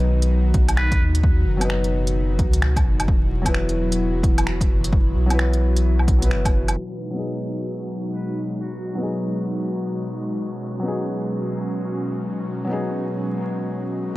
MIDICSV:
0, 0, Header, 1, 6, 480
1, 0, Start_track
1, 0, Key_signature, 5, "minor"
1, 0, Tempo, 461538
1, 1282, Time_signature, 4, 2, 24, 8
1, 14736, End_track
2, 0, Start_track
2, 0, Title_t, "Muted trumpet"
2, 0, Program_c, 0, 59
2, 801, Note_on_c, 0, 71, 87
2, 1057, Note_off_c, 0, 71, 0
2, 8475, Note_on_c, 0, 71, 82
2, 8734, Note_off_c, 0, 71, 0
2, 8960, Note_on_c, 0, 66, 82
2, 9350, Note_off_c, 0, 66, 0
2, 14736, End_track
3, 0, Start_track
3, 0, Title_t, "Felt piano"
3, 0, Program_c, 1, 0
3, 0, Note_on_c, 1, 54, 79
3, 0, Note_on_c, 1, 59, 71
3, 0, Note_on_c, 1, 63, 72
3, 0, Note_on_c, 1, 71, 87
3, 1616, Note_off_c, 1, 54, 0
3, 1630, Note_off_c, 1, 59, 0
3, 1634, Note_on_c, 1, 54, 79
3, 1644, Note_off_c, 1, 63, 0
3, 1657, Note_off_c, 1, 71, 0
3, 1661, Note_on_c, 1, 59, 72
3, 1689, Note_on_c, 1, 63, 72
3, 1717, Note_on_c, 1, 71, 87
3, 3173, Note_off_c, 1, 54, 0
3, 3186, Note_off_c, 1, 59, 0
3, 3200, Note_off_c, 1, 63, 0
3, 3214, Note_off_c, 1, 71, 0
3, 3553, Note_on_c, 1, 54, 79
3, 3580, Note_on_c, 1, 59, 72
3, 3606, Note_on_c, 1, 64, 73
3, 3634, Note_on_c, 1, 71, 91
3, 5457, Note_off_c, 1, 54, 0
3, 5470, Note_off_c, 1, 59, 0
3, 5472, Note_on_c, 1, 54, 79
3, 5483, Note_off_c, 1, 64, 0
3, 5497, Note_off_c, 1, 71, 0
3, 5499, Note_on_c, 1, 59, 73
3, 5527, Note_on_c, 1, 64, 73
3, 5554, Note_on_c, 1, 71, 90
3, 6418, Note_off_c, 1, 54, 0
3, 6433, Note_on_c, 1, 54, 75
3, 6435, Note_off_c, 1, 59, 0
3, 6449, Note_off_c, 1, 64, 0
3, 6459, Note_on_c, 1, 59, 71
3, 6463, Note_off_c, 1, 71, 0
3, 6488, Note_on_c, 1, 64, 71
3, 6516, Note_on_c, 1, 71, 82
3, 7012, Note_off_c, 1, 54, 0
3, 7025, Note_off_c, 1, 59, 0
3, 7040, Note_off_c, 1, 64, 0
3, 7053, Note_off_c, 1, 71, 0
3, 7390, Note_on_c, 1, 54, 70
3, 7421, Note_on_c, 1, 59, 64
3, 7447, Note_on_c, 1, 63, 63
3, 7474, Note_on_c, 1, 68, 78
3, 9291, Note_off_c, 1, 54, 0
3, 9307, Note_on_c, 1, 54, 72
3, 9310, Note_off_c, 1, 59, 0
3, 9323, Note_off_c, 1, 63, 0
3, 9334, Note_on_c, 1, 59, 68
3, 9337, Note_off_c, 1, 68, 0
3, 9362, Note_on_c, 1, 63, 65
3, 9388, Note_on_c, 1, 68, 79
3, 11212, Note_off_c, 1, 54, 0
3, 11227, Note_off_c, 1, 59, 0
3, 11228, Note_on_c, 1, 54, 71
3, 11241, Note_off_c, 1, 63, 0
3, 11254, Note_off_c, 1, 68, 0
3, 11256, Note_on_c, 1, 59, 68
3, 11284, Note_on_c, 1, 63, 65
3, 11313, Note_on_c, 1, 68, 81
3, 13134, Note_off_c, 1, 54, 0
3, 13148, Note_off_c, 1, 59, 0
3, 13150, Note_on_c, 1, 54, 72
3, 13162, Note_off_c, 1, 63, 0
3, 13177, Note_off_c, 1, 68, 0
3, 13179, Note_on_c, 1, 59, 66
3, 13208, Note_on_c, 1, 63, 68
3, 13234, Note_on_c, 1, 68, 80
3, 14691, Note_off_c, 1, 54, 0
3, 14705, Note_off_c, 1, 59, 0
3, 14720, Note_off_c, 1, 63, 0
3, 14733, Note_off_c, 1, 68, 0
3, 14736, End_track
4, 0, Start_track
4, 0, Title_t, "Analog synth pad"
4, 0, Program_c, 2, 89
4, 0, Note_on_c, 2, 47, 77
4, 0, Note_on_c, 2, 51, 76
4, 0, Note_on_c, 2, 54, 67
4, 0, Note_on_c, 2, 63, 69
4, 0, Note_on_c, 2, 66, 86
4, 3157, Note_off_c, 2, 51, 0
4, 3158, Note_off_c, 2, 54, 0
4, 3161, Note_off_c, 2, 63, 0
4, 3198, Note_on_c, 2, 52, 69
4, 3201, Note_on_c, 2, 54, 72
4, 3201, Note_on_c, 2, 64, 70
4, 6997, Note_off_c, 2, 47, 0
4, 6999, Note_off_c, 2, 66, 0
4, 7002, Note_off_c, 2, 52, 0
4, 7003, Note_off_c, 2, 54, 0
4, 7003, Note_off_c, 2, 64, 0
4, 7037, Note_on_c, 2, 66, 78
4, 7040, Note_on_c, 2, 54, 66
4, 7041, Note_on_c, 2, 56, 65
4, 7041, Note_on_c, 2, 63, 67
4, 7042, Note_on_c, 2, 47, 73
4, 10843, Note_off_c, 2, 63, 0
4, 10877, Note_on_c, 2, 61, 67
4, 14678, Note_off_c, 2, 66, 0
4, 14680, Note_off_c, 2, 54, 0
4, 14680, Note_off_c, 2, 56, 0
4, 14681, Note_off_c, 2, 47, 0
4, 14681, Note_off_c, 2, 61, 0
4, 14736, End_track
5, 0, Start_track
5, 0, Title_t, "Sub bass"
5, 0, Program_c, 3, 38
5, 0, Note_on_c, 3, 35, 97
5, 550, Note_off_c, 3, 35, 0
5, 564, Note_on_c, 3, 35, 82
5, 1031, Note_off_c, 3, 35, 0
5, 1044, Note_on_c, 3, 39, 85
5, 1511, Note_off_c, 3, 39, 0
5, 1524, Note_on_c, 3, 30, 101
5, 2485, Note_on_c, 3, 37, 82
5, 2501, Note_off_c, 3, 30, 0
5, 2952, Note_off_c, 3, 37, 0
5, 2967, Note_on_c, 3, 30, 95
5, 3190, Note_off_c, 3, 30, 0
5, 3205, Note_on_c, 3, 28, 97
5, 4392, Note_off_c, 3, 28, 0
5, 4404, Note_on_c, 3, 28, 82
5, 4871, Note_off_c, 3, 28, 0
5, 4885, Note_on_c, 3, 30, 84
5, 5352, Note_off_c, 3, 30, 0
5, 5360, Note_on_c, 3, 35, 99
5, 6561, Note_on_c, 3, 30, 91
5, 6576, Note_off_c, 3, 35, 0
5, 7030, Note_off_c, 3, 30, 0
5, 14736, End_track
6, 0, Start_track
6, 0, Title_t, "Drums"
6, 231, Note_on_c, 9, 42, 50
6, 335, Note_off_c, 9, 42, 0
6, 562, Note_on_c, 9, 42, 29
6, 563, Note_on_c, 9, 36, 99
6, 666, Note_off_c, 9, 42, 0
6, 667, Note_off_c, 9, 36, 0
6, 713, Note_on_c, 9, 42, 51
6, 713, Note_on_c, 9, 77, 55
6, 803, Note_on_c, 9, 26, 100
6, 817, Note_off_c, 9, 42, 0
6, 817, Note_off_c, 9, 77, 0
6, 907, Note_off_c, 9, 26, 0
6, 953, Note_on_c, 9, 36, 102
6, 954, Note_on_c, 9, 42, 43
6, 1057, Note_off_c, 9, 36, 0
6, 1058, Note_off_c, 9, 42, 0
6, 1194, Note_on_c, 9, 42, 51
6, 1284, Note_on_c, 9, 36, 110
6, 1298, Note_off_c, 9, 42, 0
6, 1388, Note_off_c, 9, 36, 0
6, 1675, Note_on_c, 9, 42, 51
6, 1675, Note_on_c, 9, 77, 49
6, 1766, Note_on_c, 9, 26, 95
6, 1779, Note_off_c, 9, 42, 0
6, 1779, Note_off_c, 9, 77, 0
6, 1870, Note_off_c, 9, 26, 0
6, 1915, Note_on_c, 9, 42, 28
6, 2019, Note_off_c, 9, 42, 0
6, 2154, Note_on_c, 9, 42, 51
6, 2258, Note_off_c, 9, 42, 0
6, 2485, Note_on_c, 9, 36, 97
6, 2485, Note_on_c, 9, 42, 28
6, 2589, Note_off_c, 9, 36, 0
6, 2589, Note_off_c, 9, 42, 0
6, 2636, Note_on_c, 9, 42, 49
6, 2727, Note_on_c, 9, 26, 98
6, 2740, Note_off_c, 9, 42, 0
6, 2831, Note_off_c, 9, 26, 0
6, 2874, Note_on_c, 9, 36, 99
6, 2878, Note_on_c, 9, 42, 41
6, 2878, Note_on_c, 9, 77, 52
6, 2978, Note_off_c, 9, 36, 0
6, 2982, Note_off_c, 9, 42, 0
6, 2982, Note_off_c, 9, 77, 0
6, 3117, Note_on_c, 9, 42, 52
6, 3117, Note_on_c, 9, 77, 61
6, 3204, Note_on_c, 9, 36, 108
6, 3221, Note_off_c, 9, 42, 0
6, 3221, Note_off_c, 9, 77, 0
6, 3308, Note_off_c, 9, 36, 0
6, 3593, Note_on_c, 9, 36, 57
6, 3596, Note_on_c, 9, 42, 54
6, 3596, Note_on_c, 9, 77, 52
6, 3686, Note_on_c, 9, 26, 95
6, 3697, Note_off_c, 9, 36, 0
6, 3700, Note_off_c, 9, 42, 0
6, 3700, Note_off_c, 9, 77, 0
6, 3790, Note_off_c, 9, 26, 0
6, 3837, Note_on_c, 9, 42, 29
6, 3941, Note_off_c, 9, 42, 0
6, 4077, Note_on_c, 9, 42, 53
6, 4181, Note_off_c, 9, 42, 0
6, 4403, Note_on_c, 9, 36, 99
6, 4408, Note_on_c, 9, 42, 29
6, 4507, Note_off_c, 9, 36, 0
6, 4512, Note_off_c, 9, 42, 0
6, 4556, Note_on_c, 9, 42, 52
6, 4556, Note_on_c, 9, 77, 61
6, 4647, Note_on_c, 9, 26, 97
6, 4660, Note_off_c, 9, 42, 0
6, 4660, Note_off_c, 9, 77, 0
6, 4751, Note_off_c, 9, 26, 0
6, 4792, Note_on_c, 9, 36, 97
6, 4797, Note_on_c, 9, 42, 44
6, 4896, Note_off_c, 9, 36, 0
6, 4901, Note_off_c, 9, 42, 0
6, 5036, Note_on_c, 9, 42, 54
6, 5123, Note_on_c, 9, 36, 112
6, 5140, Note_off_c, 9, 42, 0
6, 5227, Note_off_c, 9, 36, 0
6, 5516, Note_on_c, 9, 42, 55
6, 5516, Note_on_c, 9, 77, 55
6, 5607, Note_on_c, 9, 26, 97
6, 5620, Note_off_c, 9, 42, 0
6, 5620, Note_off_c, 9, 77, 0
6, 5711, Note_off_c, 9, 26, 0
6, 5756, Note_on_c, 9, 42, 31
6, 5860, Note_off_c, 9, 42, 0
6, 5996, Note_on_c, 9, 42, 55
6, 6100, Note_off_c, 9, 42, 0
6, 6234, Note_on_c, 9, 77, 38
6, 6322, Note_on_c, 9, 36, 100
6, 6323, Note_on_c, 9, 42, 31
6, 6338, Note_off_c, 9, 77, 0
6, 6426, Note_off_c, 9, 36, 0
6, 6427, Note_off_c, 9, 42, 0
6, 6472, Note_on_c, 9, 42, 55
6, 6564, Note_on_c, 9, 26, 98
6, 6576, Note_off_c, 9, 42, 0
6, 6668, Note_off_c, 9, 26, 0
6, 6710, Note_on_c, 9, 36, 99
6, 6713, Note_on_c, 9, 42, 46
6, 6713, Note_on_c, 9, 77, 55
6, 6814, Note_off_c, 9, 36, 0
6, 6817, Note_off_c, 9, 42, 0
6, 6817, Note_off_c, 9, 77, 0
6, 6951, Note_on_c, 9, 42, 56
6, 6951, Note_on_c, 9, 77, 68
6, 7055, Note_off_c, 9, 42, 0
6, 7055, Note_off_c, 9, 77, 0
6, 14736, End_track
0, 0, End_of_file